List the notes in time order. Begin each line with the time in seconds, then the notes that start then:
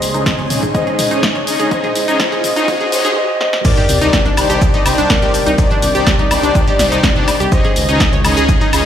Already playing: C#3 D#3 G#3 D#4 G#4 C5 D#5 C6, riser
0.02 C#2, open hi-hat, shaker
0.14 C#2 C#4 D#4 G#4 C#5 D#5, closed hi-hat, shaker
0.26 kick, snare, closed hi-hat, shaker
0.39 C#2 C#5, closed hi-hat
0.50 C#2 C#4 D#4 G#4 C#5 D#5, mid tom, open hi-hat, shaker
0.63 C#2 G#4, kick, closed hi-hat, high conga, shaker
0.74 C#4 D#4 G#4 C5 C#5 D#5, kick, closed hi-hat, shaker
0.87 G#4, closed hi-hat
0.99 C#2, mid tom, open hi-hat, shaker
1.11 C#2 C#4 D#4 G#4 C#5 D#5, closed hi-hat, shaker
1.23 kick, snare, closed hi-hat, shaker
1.35 C#2 C#5, closed hi-hat, high conga
1.47 C#4 D#4 G#4 C#5 D#5, open hi-hat, shaker
1.59 C#2 G#4, closed hi-hat, high conga, shaker
1.71 C#4 D#4 G#4 C5 C#5 D#5, kick, closed hi-hat, shaker
1.84 G#4, closed hi-hat, mid tom
1.95 C#2, open hi-hat, shaker
2.08 C#2 C#4 D#4 G#4 C#5 D#5, closed hi-hat, shaker
2.20 C#4 D#4 G#4 C5 C#5 D#5, kick, snare, closed hi-hat, shaker
2.32 C#2 G#4, closed hi-hat
2.44 C#2, mid tom, open hi-hat, shaker
2.56 C#2 C#4 D#4 G#4 C#5 D#5, closed hi-hat, high conga, shaker
2.68 C#4 D#4 G#4 C5 C#5 D#5, kick, open hi-hat, shaker
2.80 G#4, closed hi-hat, high conga
2.92 G#1 C#4 D#4 G#4 C5 C#5 D#5, open hi-hat, shaker
3.05 G#1 G#4, closed hi-hat, high conga, shaker
3.17 C5 D#5
3.41 C5 D#5, snare
3.53 snare
3.65 C3 D#3 G3 D4 D#4 G4 A#4 C5 D5, kick, closed hi-hat, crash, sub drop, shaker
3.77 G4, snare, closed hi-hat
3.89 C2, open hi-hat, shaker
4.01 C2 D4 D#4 G4 C5 D5, closed hi-hat, shaker
4.13 kick, snare, closed hi-hat, shaker
4.26 C2 D4, snare, closed hi-hat
4.37 C2 D4 D#4 G4 C5 D5, open hi-hat, high woodblock, shaker
4.50 C2 G4, closed hi-hat, shaker
4.61 kick, closed hi-hat, shaker
4.74 D#4, closed hi-hat
4.86 C2 D4 D#4 G4 C5 D5, open hi-hat, high woodblock, shaker
4.98 C2 D4, closed hi-hat, shaker
5.10 A#4 D5, kick, snare, closed hi-hat, shaker
5.22 C2 D4 D#4 G4 C5 D5, snare, closed hi-hat
5.34 open hi-hat, shaker
5.47 C2 D#4, closed hi-hat, shaker
5.58 D4 D#4 G4 C5 D5, kick, closed hi-hat, shaker
5.71 D4, closed hi-hat
5.82 C2, open hi-hat, shaker
5.95 C2 D4 D#4 G4 C5 D5, closed hi-hat, shaker
6.07 kick, snare, closed hi-hat, shaker
6.19 C2 D#4, closed hi-hat
6.31 C2 D4 D#4 G4 C5 D5, open hi-hat, high woodblock, shaker
6.43 C2 D4, closed hi-hat, shaker
6.55 kick, closed hi-hat, shaker
6.67 G4, closed hi-hat
6.79 C2 D4 D#4 G4 C5 D5, snare, open hi-hat, shaker
6.92 C2 D#4, snare, closed hi-hat, shaker
7.03 kick, snare, closed hi-hat, shaker
7.16 C2 D4 D#4 G4 C5 D5, snare, closed hi-hat
7.28 open hi-hat, high woodblock, shaker
7.40 C2 G4, closed hi-hat, shaker
7.52 C#3 D#3 G#3 C#4 D#4 G#4 C5 C#5 D#5, kick, closed hi-hat, shaker
7.64 G#4, snare, closed hi-hat
7.76 C#2, open hi-hat, shaker
7.88 C#2 C#4 D#4 G#4 C#5 D#5, closed hi-hat, shaker
8.00 kick, snare, closed hi-hat, shaker
8.13 C#2 C#5, snare, closed hi-hat
8.24 C#2 C#4 D#4 G#4 C#5 D#5, open hi-hat, high woodblock, shaker
8.37 C#2 G#4, closed hi-hat, shaker
8.49 kick, closed hi-hat, shaker
8.61 D#4, closed hi-hat
8.73 C#2 C#4 D#4 G#4 C#5 D#5, open hi-hat, high woodblock, shaker